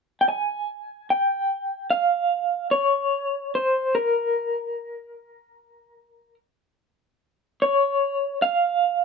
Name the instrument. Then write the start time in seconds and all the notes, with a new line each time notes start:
clean electric guitar
0.21 G5
0.29 G#5
1.10 G5
1.90 F5
2.71 C#5
3.55 C5
3.95 A#4
7.62 C#5
8.42 F5